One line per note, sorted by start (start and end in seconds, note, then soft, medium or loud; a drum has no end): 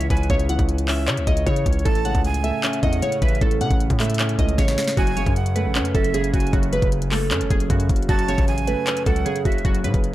0.00 0.30 C#3 loud
0.00 0.49 E3 medium
0.00 0.30 C#4 medium
0.00 0.49 C#5 loud
0.00 closed hi-hat medium
0.10 0.29 C#2 loud
0.10 0.25 B4 medium
0.10 0.29 G#5 medium
0.10 kick loud
0.10 closed hi-hat medium
0.17 closed hi-hat medium
0.23 closed hi-hat soft
0.30 0.58 C#2 loud
0.30 1.26 C#3 medium
0.30 0.45 C#5 medium
0.30 kick loud
0.30 closed hi-hat medium
0.40 closed hi-hat medium
0.49 1.45 E3 medium
0.49 0.64 F#5 medium
0.49 closed hi-hat medium
0.59 1.09 C#2 loud
0.59 kick loud
0.59 closed hi-hat medium
0.69 closed hi-hat medium
0.78 closed hi-hat medium
0.88 1.86 C#4 medium
0.88 1.25 E5 medium
0.88 clap loud
0.88 open hi-hat medium
1.08 1.19 C#3 loud
1.08 1.86 C#5 loud
1.08 clap loud
1.08 closed hi-hat medium
1.17 1.26 C#2 loud
1.17 closed hi-hat medium
1.27 1.46 C#2 loud
1.27 1.86 C#3 medium
1.27 1.42 D#5 medium
1.27 kick loud
1.27 closed hi-hat medium
1.37 closed hi-hat medium
1.46 1.65 C#3 loud
1.46 1.86 E3 medium
1.46 1.83 C#5 medium
1.46 kick loud
1.46 closed hi-hat medium
1.56 closed hi-hat medium
1.66 1.85 C#2 loud
1.66 kick loud
1.66 closed hi-hat medium
1.73 closed hi-hat soft
1.79 closed hi-hat soft
1.85 2.14 A1 loud
1.85 2.82 A2 loud
1.85 2.00 A4 medium
1.85 2.22 A5 loud
1.85 kick loud
1.85 closed hi-hat medium
1.95 closed hi-hat medium
2.05 3.01 C#3 medium
2.05 2.20 F#5 medium
2.05 closed hi-hat medium
2.15 2.52 C#2 loud
2.15 kick loud
2.15 closed hi-hat medium
2.25 2.80 G#5 medium
2.25 closed hi-hat medium
2.34 closed hi-hat medium
2.44 3.41 A3 medium
2.44 2.81 E5 medium
2.44 closed hi-hat medium
2.63 3.61 C#4 medium
2.63 clap loud
2.63 closed hi-hat medium
2.73 closed hi-hat medium
2.83 3.02 E2 loud
2.83 3.40 A2 medium
2.83 2.98 D#5 medium
2.83 3.20 F#5 medium
2.83 kick loud
2.83 closed hi-hat medium
2.93 closed hi-hat medium
3.02 3.59 C#3 medium
3.02 3.17 C#5 medium
3.02 closed hi-hat medium
3.12 closed hi-hat medium
3.22 3.41 A1 loud
3.22 3.37 B4 medium
3.22 3.41 E5 medium
3.22 kick loud
3.22 closed hi-hat medium
3.28 closed hi-hat medium
3.35 closed hi-hat soft
3.41 3.62 A1 loud
3.41 4.37 A2 medium
3.41 3.56 A4 medium
3.41 kick loud
3.41 closed hi-hat medium
3.51 closed hi-hat medium
3.61 4.57 C#3 medium
3.61 3.70 C#3 loud
3.61 3.76 F#5 medium
3.61 closed hi-hat medium
3.71 3.89 A1 loud
3.71 kick loud
3.71 closed hi-hat medium
3.80 closed hi-hat medium
3.90 4.37 A2 loud
3.90 kick loud
3.90 closed hi-hat medium
4.00 4.97 A3 medium
4.00 4.37 E5 medium
4.00 clap loud
4.00 closed hi-hat soft
4.00 open hi-hat medium
4.05 closed hi-hat medium
4.10 closed hi-hat medium
4.14 closed hi-hat medium
4.19 4.97 C#4 loud
4.19 clap loud
4.19 closed hi-hat medium
4.29 closed hi-hat medium
4.39 4.58 C#2 loud
4.39 4.97 A2 medium
4.39 4.54 D#5 medium
4.39 kick loud
4.39 closed hi-hat medium
4.49 closed hi-hat medium
4.58 4.77 A1 loud
4.58 4.97 C#3 medium
4.58 4.95 C#5 medium
4.58 kick loud
4.58 snare medium
4.58 closed hi-hat medium
4.68 snare medium
4.68 closed hi-hat medium
4.78 snare loud
4.78 closed hi-hat medium
4.84 snare medium
4.84 closed hi-hat medium
4.91 closed hi-hat medium
4.97 5.25 F#1 loud
4.97 5.93 F#2 medium
4.97 5.12 F#4 loud
4.97 5.34 G#5 loud
4.97 kick loud
4.97 closed hi-hat medium
5.07 closed hi-hat medium
5.17 6.12 C#3 medium
5.17 5.31 C#5 medium
5.17 closed hi-hat medium
5.26 5.67 F#2 loud
5.26 kick loud
5.26 closed hi-hat medium
5.36 5.91 F#5 medium
5.36 closed hi-hat medium
5.46 closed hi-hat medium
5.56 6.53 A3 medium
5.56 5.92 B4 medium
5.56 closed hi-hat medium
5.65 5.82 A1 loud
5.75 6.73 C#4 loud
5.75 clap loud
5.75 closed hi-hat medium
5.80 5.94 F#2 loud
5.85 closed hi-hat medium
5.95 6.32 F#1 loud
5.95 6.51 F#2 medium
5.95 6.09 A4 medium
5.95 6.31 E5 medium
5.95 kick loud
5.95 closed hi-hat medium
6.04 closed hi-hat medium
6.14 6.71 C#3 medium
6.14 6.29 G#4 medium
6.14 closed hi-hat medium
6.24 closed hi-hat medium
6.34 6.52 F#1 loud
6.34 6.48 F#4 medium
6.34 6.52 G#5 medium
6.34 kick medium
6.34 closed hi-hat medium
6.40 closed hi-hat medium
6.47 closed hi-hat soft
6.53 6.81 F#1 loud
6.53 7.49 F#2 medium
6.53 6.68 F#4 medium
6.53 kick loud
6.53 closed hi-hat medium
6.63 closed hi-hat medium
6.73 7.69 C#3 medium
6.73 6.87 B4 medium
6.73 closed hi-hat medium
6.82 7.33 F#1 loud
6.82 kick loud
6.82 closed hi-hat medium
6.92 closed hi-hat medium
7.02 closed hi-hat medium
7.11 8.09 A3 medium
7.11 7.48 A4 medium
7.11 clap loud
7.11 open hi-hat medium
7.31 7.42 F#2 loud
7.31 8.28 C#4 medium
7.31 clap loud
7.31 closed hi-hat medium
7.41 7.50 F#1 loud
7.41 closed hi-hat medium
7.50 7.69 F#1 loud
7.50 8.07 F#2 medium
7.50 7.65 G#4 medium
7.50 kick loud
7.50 closed hi-hat medium
7.60 closed hi-hat medium
7.70 7.89 F#2 loud
7.70 8.27 C#3 medium
7.70 8.07 F#4 medium
7.70 kick loud
7.70 closed hi-hat medium
7.80 closed hi-hat medium
7.89 8.08 F#1 loud
7.89 kick loud
7.89 closed hi-hat medium
7.96 closed hi-hat soft
8.03 closed hi-hat soft
8.09 8.37 F#1 loud
8.09 9.05 F#2 loud
8.09 8.24 F#4 loud
8.09 8.46 A5 loud
8.09 kick loud
8.09 closed hi-hat medium
8.19 closed hi-hat medium
8.28 9.24 C#3 medium
8.28 8.43 C#5 medium
8.28 closed hi-hat medium
8.38 8.76 A1 loud
8.38 kick loud
8.38 closed hi-hat medium
8.48 9.03 G#5 medium
8.48 closed hi-hat medium
8.58 closed hi-hat medium
8.67 9.65 A3 medium
8.67 9.04 B4 medium
8.67 closed hi-hat medium
8.87 9.84 C#4 loud
8.87 clap loud
8.87 closed hi-hat medium
8.97 closed hi-hat medium
9.06 9.25 C#2 loud
9.06 9.63 F#2 medium
9.06 9.21 A4 medium
9.06 9.43 F#5 medium
9.06 kick loud
9.06 closed hi-hat medium
9.16 closed hi-hat medium
9.26 9.83 C#3 medium
9.26 9.40 G#4 medium
9.26 closed hi-hat medium
9.36 closed hi-hat medium
9.45 9.64 F#1 loud
9.45 9.60 F#4 medium
9.45 9.64 E5 medium
9.45 kick medium
9.45 closed hi-hat medium
9.52 closed hi-hat medium
9.58 closed hi-hat soft
9.65 9.86 F#1 loud
9.65 10.14 F#2 medium
9.65 9.80 F#4 loud
9.65 kick loud
9.65 closed hi-hat medium
9.75 closed hi-hat medium
9.84 9.94 A2 loud
9.84 10.14 C#3 medium
9.84 9.99 B4 medium
9.84 closed hi-hat medium
9.94 10.13 F#1 loud
9.94 kick loud
9.94 closed hi-hat medium
10.04 closed hi-hat medium